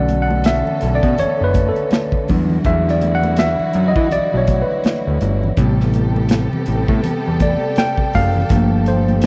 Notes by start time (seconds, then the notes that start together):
Already playing: B1 D3 A3 B3 C#4 A4 D5 F#5
0.08 closed hi-hat, muted conga, high conga
0.22 F#5
0.30 high conga
0.44 E5, snare, closed hi-hat, muted conga
0.67 low conga
0.81 B1, closed hi-hat, muted conga
0.95 D5
1.03 B2, kick, closed hi-hat
1.18 F#1 C#5, closed hi-hat, muted conga, low conga
1.41 F#1 B4
1.54 kick, closed hi-hat, muted conga, high conga
1.69 A4
1.76 closed hi-hat
1.91 snare, closed hi-hat, high conga
2.12 kick
2.28 E2 E3 F#3 G3 D4 E4 F#4, kick, open hi-hat, muted conga, high conga
2.50 low conga
2.64 E2 E5, kick, closed hi-hat, muted conga
2.88 D5, snare
3.01 closed hi-hat, high conga
3.15 F#5
3.23 closed hi-hat, high conga
3.36 E5, snare, closed hi-hat, muted conga
3.60 low conga
3.73 F#2, closed hi-hat, muted conga
3.88 D#5
3.96 E3, kick
4.11 B1 D5, closed hi-hat, low conga
4.34 B1 C#5
4.47 kick, closed hi-hat, high conga
4.62 B4
4.84 snare, closed hi-hat, high conga
5.07 D2
5.21 G1, closed hi-hat, high conga
5.43 low conga
5.57 A1 C3 G3 B3 G4 A4, kick, closed hi-hat, muted conga
5.80 snare
5.94 closed hi-hat, high conga
6.16 high conga
6.29 snare, closed hi-hat, muted conga
6.53 low conga
6.66 A1, closed hi-hat
6.88 A2, kick
7.04 E2, closed hi-hat, muted conga, low conga
7.27 E2
7.40 D5, kick, closed hi-hat, muted conga, high conga
7.76 G5, snare, closed hi-hat, muted conga, high conga
7.98 kick
8.13 F#1 F5, kick, open hi-hat, muted conga, high conga
8.36 low conga
8.49 G1 A#2 F3 A3 A#3, kick, closed hi-hat
8.86 C5, closed hi-hat, high conga
9.08 closed hi-hat, high conga
9.21 closed hi-hat